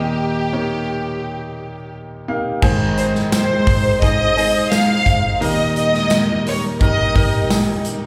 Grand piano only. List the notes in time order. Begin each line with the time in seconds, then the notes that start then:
Already playing: D#2 A#2 A#3 D#4 G4 D#5
0.53 A#3 D#4 G4 C#5
2.28 A#3 D#4 G4 F5
2.62 G#2 D#3 D#4 G#4 C5
4.03 D#4 G#4 C5
4.37 D#4 G#4 C5
5.41 D#2 A#2 D#4 G4 A#4
6.81 D#4 G4 A#4
7.15 D#4 G4 A#4